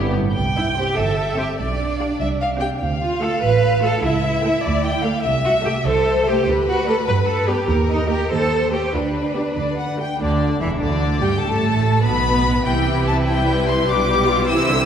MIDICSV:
0, 0, Header, 1, 6, 480
1, 0, Start_track
1, 0, Key_signature, 0, "major"
1, 0, Tempo, 411523
1, 415, Time_signature, 6, 3, 24, 8
1, 3283, Tempo, 405132
1, 6160, Key_signature, 1, "major"
1, 9043, Tempo, 420168
1, 12403, Tempo, 407332
1, 17394, End_track
2, 0, Start_track
2, 0, Title_t, "Violin section"
2, 0, Program_c, 0, 48
2, 0, Note_on_c, 0, 67, 65
2, 165, Note_off_c, 0, 67, 0
2, 881, Note_on_c, 0, 79, 42
2, 1068, Note_off_c, 0, 79, 0
2, 1599, Note_on_c, 0, 79, 43
2, 1785, Note_off_c, 0, 79, 0
2, 2325, Note_on_c, 0, 77, 44
2, 2504, Note_off_c, 0, 77, 0
2, 3037, Note_on_c, 0, 76, 40
2, 3218, Note_off_c, 0, 76, 0
2, 3759, Note_on_c, 0, 77, 45
2, 3941, Note_off_c, 0, 77, 0
2, 4476, Note_on_c, 0, 77, 43
2, 4662, Note_off_c, 0, 77, 0
2, 5218, Note_on_c, 0, 79, 49
2, 5391, Note_off_c, 0, 79, 0
2, 5908, Note_on_c, 0, 77, 50
2, 6092, Note_off_c, 0, 77, 0
2, 6619, Note_on_c, 0, 76, 52
2, 6806, Note_off_c, 0, 76, 0
2, 7352, Note_on_c, 0, 76, 51
2, 7535, Note_off_c, 0, 76, 0
2, 8071, Note_on_c, 0, 74, 51
2, 8253, Note_off_c, 0, 74, 0
2, 8800, Note_on_c, 0, 74, 55
2, 8981, Note_off_c, 0, 74, 0
2, 9503, Note_on_c, 0, 75, 51
2, 9685, Note_off_c, 0, 75, 0
2, 10233, Note_on_c, 0, 73, 48
2, 10413, Note_off_c, 0, 73, 0
2, 10953, Note_on_c, 0, 74, 42
2, 11138, Note_off_c, 0, 74, 0
2, 11206, Note_on_c, 0, 74, 49
2, 11431, Note_off_c, 0, 74, 0
2, 11438, Note_on_c, 0, 78, 47
2, 11681, Note_off_c, 0, 78, 0
2, 11687, Note_on_c, 0, 79, 45
2, 11924, Note_off_c, 0, 79, 0
2, 11932, Note_on_c, 0, 74, 48
2, 12371, Note_off_c, 0, 74, 0
2, 12390, Note_on_c, 0, 76, 48
2, 12484, Note_off_c, 0, 76, 0
2, 12649, Note_on_c, 0, 74, 52
2, 13109, Note_on_c, 0, 79, 54
2, 13121, Note_off_c, 0, 74, 0
2, 13350, Note_on_c, 0, 81, 56
2, 13361, Note_off_c, 0, 79, 0
2, 14083, Note_on_c, 0, 83, 64
2, 14088, Note_off_c, 0, 81, 0
2, 14801, Note_off_c, 0, 83, 0
2, 14820, Note_on_c, 0, 79, 57
2, 15293, Note_off_c, 0, 79, 0
2, 15296, Note_on_c, 0, 81, 58
2, 15390, Note_off_c, 0, 81, 0
2, 15535, Note_on_c, 0, 79, 67
2, 16004, Note_off_c, 0, 79, 0
2, 16010, Note_on_c, 0, 84, 65
2, 16251, Note_off_c, 0, 84, 0
2, 16257, Note_on_c, 0, 86, 72
2, 16958, Note_on_c, 0, 88, 77
2, 16969, Note_off_c, 0, 86, 0
2, 17394, Note_off_c, 0, 88, 0
2, 17394, End_track
3, 0, Start_track
3, 0, Title_t, "Violin section"
3, 0, Program_c, 1, 48
3, 0, Note_on_c, 1, 59, 49
3, 0, Note_on_c, 1, 67, 49
3, 165, Note_off_c, 1, 59, 0
3, 174, Note_off_c, 1, 67, 0
3, 407, Note_on_c, 1, 79, 51
3, 1089, Note_off_c, 1, 79, 0
3, 1123, Note_on_c, 1, 76, 46
3, 1847, Note_off_c, 1, 76, 0
3, 1858, Note_on_c, 1, 74, 45
3, 2555, Note_off_c, 1, 74, 0
3, 2565, Note_on_c, 1, 76, 44
3, 2658, Note_off_c, 1, 76, 0
3, 2810, Note_on_c, 1, 77, 45
3, 2903, Note_off_c, 1, 77, 0
3, 3048, Note_on_c, 1, 79, 49
3, 3141, Note_off_c, 1, 79, 0
3, 3285, Note_on_c, 1, 77, 47
3, 4702, Note_off_c, 1, 77, 0
3, 4739, Note_on_c, 1, 76, 50
3, 5433, Note_on_c, 1, 74, 50
3, 5438, Note_off_c, 1, 76, 0
3, 5678, Note_off_c, 1, 74, 0
3, 5689, Note_on_c, 1, 79, 49
3, 5924, Note_off_c, 1, 79, 0
3, 5930, Note_on_c, 1, 77, 46
3, 6134, Note_on_c, 1, 76, 55
3, 6164, Note_off_c, 1, 77, 0
3, 6851, Note_off_c, 1, 76, 0
3, 6870, Note_on_c, 1, 72, 52
3, 7598, Note_off_c, 1, 72, 0
3, 7622, Note_on_c, 1, 71, 62
3, 9042, Note_on_c, 1, 70, 53
3, 9052, Note_off_c, 1, 71, 0
3, 9738, Note_off_c, 1, 70, 0
3, 9754, Note_on_c, 1, 72, 50
3, 10467, Note_on_c, 1, 71, 40
3, 10476, Note_off_c, 1, 72, 0
3, 11543, Note_off_c, 1, 71, 0
3, 11925, Note_on_c, 1, 62, 45
3, 12367, Note_off_c, 1, 62, 0
3, 12422, Note_on_c, 1, 64, 40
3, 12632, Note_on_c, 1, 62, 45
3, 12656, Note_off_c, 1, 64, 0
3, 13122, Note_off_c, 1, 62, 0
3, 13129, Note_on_c, 1, 67, 46
3, 13352, Note_on_c, 1, 69, 51
3, 13366, Note_off_c, 1, 67, 0
3, 14089, Note_off_c, 1, 69, 0
3, 14092, Note_on_c, 1, 71, 53
3, 14793, Note_off_c, 1, 71, 0
3, 14807, Note_on_c, 1, 71, 43
3, 14809, Note_on_c, 1, 67, 41
3, 15488, Note_off_c, 1, 67, 0
3, 15549, Note_on_c, 1, 64, 42
3, 16250, Note_on_c, 1, 67, 46
3, 16258, Note_off_c, 1, 64, 0
3, 16913, Note_off_c, 1, 71, 0
3, 16946, Note_off_c, 1, 67, 0
3, 16960, Note_on_c, 1, 67, 49
3, 16972, Note_on_c, 1, 72, 44
3, 17394, Note_off_c, 1, 67, 0
3, 17394, Note_off_c, 1, 72, 0
3, 17394, End_track
4, 0, Start_track
4, 0, Title_t, "Cello section"
4, 0, Program_c, 2, 48
4, 0, Note_on_c, 2, 43, 47
4, 163, Note_off_c, 2, 43, 0
4, 172, Note_on_c, 2, 45, 48
4, 417, Note_off_c, 2, 45, 0
4, 666, Note_on_c, 2, 64, 49
4, 759, Note_off_c, 2, 64, 0
4, 899, Note_on_c, 2, 67, 53
4, 1134, Note_off_c, 2, 67, 0
4, 1138, Note_on_c, 2, 69, 57
4, 1615, Note_on_c, 2, 67, 54
4, 1617, Note_off_c, 2, 69, 0
4, 1709, Note_off_c, 2, 67, 0
4, 1862, Note_on_c, 2, 62, 49
4, 3025, Note_off_c, 2, 62, 0
4, 3519, Note_on_c, 2, 65, 53
4, 3746, Note_off_c, 2, 65, 0
4, 3764, Note_on_c, 2, 69, 59
4, 3999, Note_on_c, 2, 71, 59
4, 4006, Note_off_c, 2, 69, 0
4, 4474, Note_off_c, 2, 71, 0
4, 4485, Note_on_c, 2, 69, 59
4, 4724, Note_off_c, 2, 69, 0
4, 4724, Note_on_c, 2, 64, 54
4, 5919, Note_off_c, 2, 64, 0
4, 6402, Note_on_c, 2, 66, 60
4, 6497, Note_off_c, 2, 66, 0
4, 6647, Note_on_c, 2, 67, 53
4, 6741, Note_off_c, 2, 67, 0
4, 6889, Note_on_c, 2, 69, 66
4, 7357, Note_off_c, 2, 69, 0
4, 7374, Note_on_c, 2, 67, 59
4, 7608, Note_off_c, 2, 67, 0
4, 7851, Note_on_c, 2, 66, 62
4, 8069, Note_off_c, 2, 66, 0
4, 8088, Note_on_c, 2, 69, 61
4, 8182, Note_off_c, 2, 69, 0
4, 8330, Note_on_c, 2, 71, 68
4, 8423, Note_off_c, 2, 71, 0
4, 8561, Note_on_c, 2, 69, 60
4, 8796, Note_off_c, 2, 69, 0
4, 8808, Note_on_c, 2, 67, 57
4, 9047, Note_off_c, 2, 67, 0
4, 9286, Note_on_c, 2, 63, 64
4, 9503, Note_off_c, 2, 63, 0
4, 9518, Note_on_c, 2, 67, 59
4, 9749, Note_off_c, 2, 67, 0
4, 9761, Note_on_c, 2, 69, 65
4, 10227, Note_off_c, 2, 69, 0
4, 10248, Note_on_c, 2, 67, 59
4, 10479, Note_off_c, 2, 67, 0
4, 10488, Note_on_c, 2, 62, 55
4, 11697, Note_off_c, 2, 62, 0
4, 11926, Note_on_c, 2, 38, 42
4, 12368, Note_off_c, 2, 38, 0
4, 12400, Note_on_c, 2, 40, 43
4, 12640, Note_off_c, 2, 40, 0
4, 12644, Note_on_c, 2, 38, 43
4, 13126, Note_on_c, 2, 43, 46
4, 13128, Note_off_c, 2, 38, 0
4, 13367, Note_on_c, 2, 45, 51
4, 13369, Note_off_c, 2, 43, 0
4, 14082, Note_off_c, 2, 45, 0
4, 14086, Note_on_c, 2, 47, 47
4, 14817, Note_off_c, 2, 47, 0
4, 14821, Note_on_c, 2, 48, 41
4, 16207, Note_off_c, 2, 48, 0
4, 16248, Note_on_c, 2, 47, 48
4, 16950, Note_off_c, 2, 47, 0
4, 16959, Note_on_c, 2, 48, 56
4, 17394, Note_off_c, 2, 48, 0
4, 17394, End_track
5, 0, Start_track
5, 0, Title_t, "Viola section"
5, 0, Program_c, 3, 48
5, 902, Note_on_c, 3, 72, 41
5, 909, Note_on_c, 3, 60, 40
5, 1080, Note_off_c, 3, 72, 0
5, 1083, Note_off_c, 3, 60, 0
5, 1611, Note_on_c, 3, 60, 42
5, 1613, Note_on_c, 3, 72, 40
5, 1791, Note_off_c, 3, 60, 0
5, 1792, Note_off_c, 3, 72, 0
5, 2332, Note_on_c, 3, 62, 40
5, 2332, Note_on_c, 3, 67, 41
5, 2508, Note_off_c, 3, 62, 0
5, 2508, Note_off_c, 3, 67, 0
5, 3043, Note_on_c, 3, 60, 44
5, 3048, Note_on_c, 3, 67, 44
5, 3221, Note_off_c, 3, 60, 0
5, 3224, Note_off_c, 3, 67, 0
5, 3779, Note_on_c, 3, 65, 45
5, 3781, Note_on_c, 3, 57, 41
5, 3952, Note_off_c, 3, 65, 0
5, 3953, Note_off_c, 3, 57, 0
5, 4494, Note_on_c, 3, 57, 47
5, 4502, Note_on_c, 3, 65, 46
5, 4672, Note_off_c, 3, 57, 0
5, 4676, Note_off_c, 3, 65, 0
5, 5211, Note_on_c, 3, 57, 47
5, 5216, Note_on_c, 3, 69, 47
5, 5388, Note_off_c, 3, 57, 0
5, 5390, Note_off_c, 3, 69, 0
5, 5925, Note_on_c, 3, 57, 49
5, 5926, Note_on_c, 3, 69, 50
5, 6101, Note_off_c, 3, 57, 0
5, 6101, Note_off_c, 3, 69, 0
5, 6648, Note_on_c, 3, 57, 52
5, 6648, Note_on_c, 3, 69, 53
5, 6822, Note_off_c, 3, 57, 0
5, 6822, Note_off_c, 3, 69, 0
5, 7381, Note_on_c, 3, 57, 51
5, 7392, Note_on_c, 3, 69, 49
5, 7551, Note_off_c, 3, 57, 0
5, 7557, Note_off_c, 3, 69, 0
5, 8099, Note_on_c, 3, 57, 55
5, 8101, Note_on_c, 3, 69, 53
5, 8268, Note_off_c, 3, 57, 0
5, 8269, Note_off_c, 3, 69, 0
5, 8823, Note_on_c, 3, 59, 50
5, 8826, Note_on_c, 3, 67, 51
5, 8993, Note_off_c, 3, 59, 0
5, 8995, Note_off_c, 3, 67, 0
5, 9518, Note_on_c, 3, 58, 47
5, 9523, Note_on_c, 3, 67, 45
5, 9693, Note_off_c, 3, 58, 0
5, 9696, Note_off_c, 3, 67, 0
5, 10240, Note_on_c, 3, 58, 45
5, 10241, Note_on_c, 3, 67, 44
5, 10417, Note_off_c, 3, 58, 0
5, 10418, Note_off_c, 3, 67, 0
5, 10966, Note_on_c, 3, 67, 41
5, 10967, Note_on_c, 3, 59, 40
5, 11145, Note_off_c, 3, 67, 0
5, 11146, Note_off_c, 3, 59, 0
5, 11683, Note_on_c, 3, 57, 42
5, 11685, Note_on_c, 3, 66, 43
5, 11866, Note_off_c, 3, 57, 0
5, 11867, Note_off_c, 3, 66, 0
5, 11918, Note_on_c, 3, 50, 42
5, 12363, Note_off_c, 3, 50, 0
5, 12389, Note_on_c, 3, 52, 42
5, 12483, Note_off_c, 3, 52, 0
5, 12642, Note_on_c, 3, 50, 46
5, 13115, Note_on_c, 3, 55, 44
5, 13117, Note_off_c, 3, 50, 0
5, 13210, Note_off_c, 3, 55, 0
5, 13365, Note_on_c, 3, 57, 48
5, 14081, Note_off_c, 3, 57, 0
5, 14084, Note_on_c, 3, 59, 56
5, 14801, Note_off_c, 3, 59, 0
5, 14813, Note_on_c, 3, 64, 47
5, 14817, Note_on_c, 3, 52, 43
5, 15492, Note_off_c, 3, 52, 0
5, 15533, Note_on_c, 3, 55, 47
5, 16203, Note_off_c, 3, 64, 0
5, 16229, Note_off_c, 3, 55, 0
5, 16242, Note_on_c, 3, 62, 48
5, 16244, Note_on_c, 3, 55, 48
5, 16477, Note_on_c, 3, 67, 54
5, 16485, Note_off_c, 3, 62, 0
5, 16722, Note_off_c, 3, 67, 0
5, 16723, Note_on_c, 3, 65, 55
5, 16948, Note_off_c, 3, 55, 0
5, 16964, Note_off_c, 3, 65, 0
5, 16968, Note_on_c, 3, 52, 51
5, 16973, Note_on_c, 3, 64, 53
5, 17201, Note_off_c, 3, 52, 0
5, 17209, Note_on_c, 3, 50, 55
5, 17394, Note_off_c, 3, 50, 0
5, 17394, Note_off_c, 3, 64, 0
5, 17394, End_track
6, 0, Start_track
6, 0, Title_t, "Double bass section"
6, 0, Program_c, 4, 48
6, 0, Note_on_c, 4, 31, 57
6, 167, Note_off_c, 4, 31, 0
6, 416, Note_on_c, 4, 36, 50
6, 989, Note_off_c, 4, 36, 0
6, 1139, Note_on_c, 4, 31, 54
6, 1706, Note_off_c, 4, 31, 0
6, 1854, Note_on_c, 4, 35, 57
6, 2418, Note_off_c, 4, 35, 0
6, 2573, Note_on_c, 4, 36, 51
6, 3137, Note_off_c, 4, 36, 0
6, 3275, Note_on_c, 4, 38, 54
6, 3851, Note_off_c, 4, 38, 0
6, 4002, Note_on_c, 4, 33, 58
6, 4576, Note_off_c, 4, 33, 0
6, 4727, Note_on_c, 4, 37, 56
6, 5297, Note_off_c, 4, 37, 0
6, 5449, Note_on_c, 4, 38, 62
6, 6011, Note_off_c, 4, 38, 0
6, 6164, Note_on_c, 4, 36, 60
6, 6730, Note_off_c, 4, 36, 0
6, 6880, Note_on_c, 4, 36, 64
6, 7452, Note_off_c, 4, 36, 0
6, 7611, Note_on_c, 4, 38, 64
6, 8174, Note_off_c, 4, 38, 0
6, 8331, Note_on_c, 4, 43, 66
6, 8896, Note_off_c, 4, 43, 0
6, 9048, Note_on_c, 4, 39, 68
6, 9606, Note_off_c, 4, 39, 0
6, 9757, Note_on_c, 4, 39, 56
6, 10325, Note_off_c, 4, 39, 0
6, 10478, Note_on_c, 4, 38, 58
6, 11055, Note_off_c, 4, 38, 0
6, 11200, Note_on_c, 4, 38, 55
6, 11777, Note_off_c, 4, 38, 0
6, 11929, Note_on_c, 4, 38, 50
6, 12370, Note_off_c, 4, 38, 0
6, 12407, Note_on_c, 4, 28, 43
6, 12643, Note_off_c, 4, 28, 0
6, 12646, Note_on_c, 4, 38, 48
6, 13123, Note_on_c, 4, 31, 49
6, 13129, Note_off_c, 4, 38, 0
6, 13368, Note_off_c, 4, 31, 0
6, 13369, Note_on_c, 4, 33, 51
6, 14083, Note_off_c, 4, 33, 0
6, 14103, Note_on_c, 4, 35, 55
6, 14825, Note_off_c, 4, 35, 0
6, 14833, Note_on_c, 4, 36, 50
6, 16213, Note_off_c, 4, 36, 0
6, 16258, Note_on_c, 4, 35, 51
6, 16955, Note_off_c, 4, 35, 0
6, 16971, Note_on_c, 4, 36, 58
6, 17394, Note_off_c, 4, 36, 0
6, 17394, End_track
0, 0, End_of_file